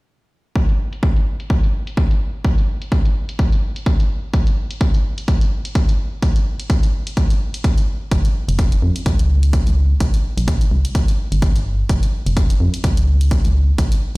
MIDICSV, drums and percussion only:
0, 0, Header, 1, 2, 480
1, 0, Start_track
1, 0, Tempo, 472441
1, 565, Time_signature, 4, 2, 24, 8
1, 14397, End_track
2, 0, Start_track
2, 0, Title_t, "Drums"
2, 564, Note_on_c, 9, 36, 110
2, 565, Note_on_c, 9, 42, 78
2, 666, Note_off_c, 9, 36, 0
2, 666, Note_off_c, 9, 42, 0
2, 701, Note_on_c, 9, 42, 52
2, 803, Note_off_c, 9, 42, 0
2, 941, Note_on_c, 9, 42, 36
2, 1043, Note_off_c, 9, 42, 0
2, 1044, Note_on_c, 9, 36, 116
2, 1045, Note_on_c, 9, 42, 79
2, 1146, Note_off_c, 9, 36, 0
2, 1147, Note_off_c, 9, 42, 0
2, 1181, Note_on_c, 9, 42, 53
2, 1283, Note_off_c, 9, 42, 0
2, 1421, Note_on_c, 9, 42, 35
2, 1523, Note_off_c, 9, 42, 0
2, 1525, Note_on_c, 9, 36, 110
2, 1526, Note_on_c, 9, 42, 79
2, 1626, Note_off_c, 9, 36, 0
2, 1627, Note_off_c, 9, 42, 0
2, 1661, Note_on_c, 9, 42, 53
2, 1763, Note_off_c, 9, 42, 0
2, 1902, Note_on_c, 9, 42, 38
2, 2003, Note_off_c, 9, 42, 0
2, 2004, Note_on_c, 9, 36, 113
2, 2005, Note_on_c, 9, 42, 81
2, 2106, Note_off_c, 9, 36, 0
2, 2107, Note_off_c, 9, 42, 0
2, 2142, Note_on_c, 9, 42, 53
2, 2244, Note_off_c, 9, 42, 0
2, 2485, Note_on_c, 9, 36, 119
2, 2486, Note_on_c, 9, 42, 79
2, 2586, Note_off_c, 9, 36, 0
2, 2587, Note_off_c, 9, 42, 0
2, 2622, Note_on_c, 9, 42, 49
2, 2723, Note_off_c, 9, 42, 0
2, 2862, Note_on_c, 9, 42, 35
2, 2963, Note_off_c, 9, 42, 0
2, 2965, Note_on_c, 9, 36, 122
2, 2966, Note_on_c, 9, 42, 74
2, 3066, Note_off_c, 9, 36, 0
2, 3067, Note_off_c, 9, 42, 0
2, 3102, Note_on_c, 9, 42, 51
2, 3203, Note_off_c, 9, 42, 0
2, 3342, Note_on_c, 9, 42, 37
2, 3443, Note_off_c, 9, 42, 0
2, 3445, Note_on_c, 9, 36, 119
2, 3446, Note_on_c, 9, 42, 76
2, 3547, Note_off_c, 9, 36, 0
2, 3547, Note_off_c, 9, 42, 0
2, 3582, Note_on_c, 9, 42, 51
2, 3683, Note_off_c, 9, 42, 0
2, 3821, Note_on_c, 9, 42, 35
2, 3923, Note_off_c, 9, 42, 0
2, 3925, Note_on_c, 9, 36, 117
2, 3925, Note_on_c, 9, 42, 76
2, 4027, Note_off_c, 9, 36, 0
2, 4027, Note_off_c, 9, 42, 0
2, 4061, Note_on_c, 9, 42, 52
2, 4163, Note_off_c, 9, 42, 0
2, 4405, Note_on_c, 9, 36, 117
2, 4405, Note_on_c, 9, 42, 74
2, 4506, Note_off_c, 9, 36, 0
2, 4507, Note_off_c, 9, 42, 0
2, 4541, Note_on_c, 9, 42, 49
2, 4643, Note_off_c, 9, 42, 0
2, 4781, Note_on_c, 9, 42, 32
2, 4882, Note_off_c, 9, 42, 0
2, 4885, Note_on_c, 9, 36, 120
2, 4885, Note_on_c, 9, 42, 75
2, 4986, Note_off_c, 9, 36, 0
2, 4986, Note_off_c, 9, 42, 0
2, 5021, Note_on_c, 9, 42, 48
2, 5122, Note_off_c, 9, 42, 0
2, 5261, Note_on_c, 9, 42, 34
2, 5363, Note_off_c, 9, 42, 0
2, 5365, Note_on_c, 9, 36, 121
2, 5365, Note_on_c, 9, 42, 73
2, 5466, Note_off_c, 9, 36, 0
2, 5467, Note_off_c, 9, 42, 0
2, 5501, Note_on_c, 9, 42, 52
2, 5602, Note_off_c, 9, 42, 0
2, 5741, Note_on_c, 9, 42, 35
2, 5843, Note_off_c, 9, 42, 0
2, 5845, Note_on_c, 9, 36, 123
2, 5845, Note_on_c, 9, 42, 78
2, 5946, Note_off_c, 9, 36, 0
2, 5946, Note_off_c, 9, 42, 0
2, 5981, Note_on_c, 9, 42, 50
2, 6083, Note_off_c, 9, 42, 0
2, 6324, Note_on_c, 9, 36, 119
2, 6325, Note_on_c, 9, 42, 73
2, 6426, Note_off_c, 9, 36, 0
2, 6427, Note_off_c, 9, 42, 0
2, 6461, Note_on_c, 9, 42, 46
2, 6562, Note_off_c, 9, 42, 0
2, 6701, Note_on_c, 9, 42, 34
2, 6803, Note_off_c, 9, 42, 0
2, 6804, Note_on_c, 9, 36, 119
2, 6805, Note_on_c, 9, 42, 74
2, 6906, Note_off_c, 9, 36, 0
2, 6907, Note_off_c, 9, 42, 0
2, 6941, Note_on_c, 9, 42, 50
2, 7043, Note_off_c, 9, 42, 0
2, 7181, Note_on_c, 9, 42, 34
2, 7283, Note_off_c, 9, 42, 0
2, 7285, Note_on_c, 9, 36, 123
2, 7285, Note_on_c, 9, 42, 69
2, 7386, Note_off_c, 9, 36, 0
2, 7387, Note_off_c, 9, 42, 0
2, 7421, Note_on_c, 9, 42, 48
2, 7523, Note_off_c, 9, 42, 0
2, 7662, Note_on_c, 9, 42, 33
2, 7763, Note_off_c, 9, 42, 0
2, 7765, Note_on_c, 9, 36, 116
2, 7765, Note_on_c, 9, 42, 69
2, 7866, Note_off_c, 9, 36, 0
2, 7867, Note_off_c, 9, 42, 0
2, 7901, Note_on_c, 9, 42, 48
2, 8003, Note_off_c, 9, 42, 0
2, 8245, Note_on_c, 9, 36, 118
2, 8245, Note_on_c, 9, 42, 75
2, 8346, Note_off_c, 9, 36, 0
2, 8347, Note_off_c, 9, 42, 0
2, 8382, Note_on_c, 9, 42, 48
2, 8483, Note_off_c, 9, 42, 0
2, 8621, Note_on_c, 9, 42, 33
2, 8723, Note_off_c, 9, 42, 0
2, 8725, Note_on_c, 9, 36, 116
2, 8725, Note_on_c, 9, 42, 70
2, 8826, Note_off_c, 9, 36, 0
2, 8826, Note_off_c, 9, 42, 0
2, 8861, Note_on_c, 9, 42, 48
2, 8962, Note_off_c, 9, 42, 0
2, 9101, Note_on_c, 9, 42, 33
2, 9202, Note_off_c, 9, 42, 0
2, 9205, Note_on_c, 9, 36, 114
2, 9205, Note_on_c, 9, 42, 72
2, 9306, Note_off_c, 9, 36, 0
2, 9306, Note_off_c, 9, 42, 0
2, 9341, Note_on_c, 9, 42, 49
2, 9443, Note_off_c, 9, 42, 0
2, 9581, Note_on_c, 9, 42, 32
2, 9683, Note_off_c, 9, 42, 0
2, 9685, Note_on_c, 9, 36, 120
2, 9685, Note_on_c, 9, 42, 73
2, 9786, Note_off_c, 9, 36, 0
2, 9787, Note_off_c, 9, 42, 0
2, 9821, Note_on_c, 9, 42, 49
2, 9922, Note_off_c, 9, 42, 0
2, 10165, Note_on_c, 9, 36, 111
2, 10165, Note_on_c, 9, 42, 74
2, 10266, Note_off_c, 9, 36, 0
2, 10266, Note_off_c, 9, 42, 0
2, 10301, Note_on_c, 9, 42, 47
2, 10403, Note_off_c, 9, 42, 0
2, 10541, Note_on_c, 9, 42, 34
2, 10643, Note_off_c, 9, 42, 0
2, 10645, Note_on_c, 9, 36, 112
2, 10645, Note_on_c, 9, 42, 78
2, 10746, Note_off_c, 9, 36, 0
2, 10747, Note_off_c, 9, 42, 0
2, 10781, Note_on_c, 9, 42, 51
2, 10883, Note_off_c, 9, 42, 0
2, 11022, Note_on_c, 9, 42, 37
2, 11123, Note_off_c, 9, 42, 0
2, 11125, Note_on_c, 9, 36, 114
2, 11125, Note_on_c, 9, 42, 76
2, 11226, Note_off_c, 9, 36, 0
2, 11227, Note_off_c, 9, 42, 0
2, 11261, Note_on_c, 9, 42, 51
2, 11363, Note_off_c, 9, 42, 0
2, 11501, Note_on_c, 9, 42, 35
2, 11603, Note_off_c, 9, 42, 0
2, 11605, Note_on_c, 9, 36, 114
2, 11605, Note_on_c, 9, 42, 81
2, 11706, Note_off_c, 9, 42, 0
2, 11707, Note_off_c, 9, 36, 0
2, 11741, Note_on_c, 9, 42, 51
2, 11843, Note_off_c, 9, 42, 0
2, 12085, Note_on_c, 9, 36, 109
2, 12085, Note_on_c, 9, 42, 80
2, 12186, Note_off_c, 9, 36, 0
2, 12186, Note_off_c, 9, 42, 0
2, 12221, Note_on_c, 9, 42, 53
2, 12323, Note_off_c, 9, 42, 0
2, 12461, Note_on_c, 9, 42, 36
2, 12563, Note_off_c, 9, 42, 0
2, 12565, Note_on_c, 9, 36, 109
2, 12565, Note_on_c, 9, 42, 81
2, 12666, Note_off_c, 9, 36, 0
2, 12667, Note_off_c, 9, 42, 0
2, 12701, Note_on_c, 9, 42, 52
2, 12803, Note_off_c, 9, 42, 0
2, 12941, Note_on_c, 9, 42, 37
2, 13043, Note_off_c, 9, 42, 0
2, 13045, Note_on_c, 9, 36, 111
2, 13045, Note_on_c, 9, 42, 79
2, 13146, Note_off_c, 9, 36, 0
2, 13147, Note_off_c, 9, 42, 0
2, 13181, Note_on_c, 9, 42, 52
2, 13283, Note_off_c, 9, 42, 0
2, 13421, Note_on_c, 9, 42, 37
2, 13523, Note_off_c, 9, 42, 0
2, 13525, Note_on_c, 9, 36, 115
2, 13525, Note_on_c, 9, 42, 78
2, 13626, Note_off_c, 9, 36, 0
2, 13626, Note_off_c, 9, 42, 0
2, 13661, Note_on_c, 9, 42, 53
2, 13763, Note_off_c, 9, 42, 0
2, 14005, Note_on_c, 9, 36, 106
2, 14005, Note_on_c, 9, 42, 82
2, 14106, Note_off_c, 9, 36, 0
2, 14107, Note_off_c, 9, 42, 0
2, 14141, Note_on_c, 9, 42, 56
2, 14243, Note_off_c, 9, 42, 0
2, 14397, End_track
0, 0, End_of_file